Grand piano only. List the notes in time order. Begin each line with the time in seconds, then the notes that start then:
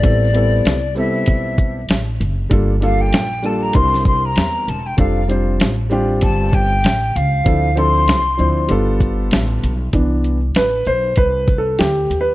0.02 G3 B3 C4 E4 A4
0.33 G3 B3 C4 E4 A4
0.95 G3 B3 C4 E4 A4
2.50 G3 A#3 D4 F4 A4
2.80 G3 A#3 D4 F4 A4
3.42 G3 A#3 D4 F4 A4
3.73 G3 C4 D4 E4 A#4
4.97 G3 C4 D4 F4 A4
5.28 G3 C4 D4 F4 C5
5.90 G3 C4 D4 F4 G4
7.44 F3 C4 D4 E4 A4
7.75 F3 C4 D4 E4 A4
8.38 F3 C4 D4 E4 C5
8.68 G3 B3 D4 F4 A4
9.93 E3 B3 D4
10.56 B4
10.87 C5
11.18 B4
11.58 A4
11.79 G4
12.21 B4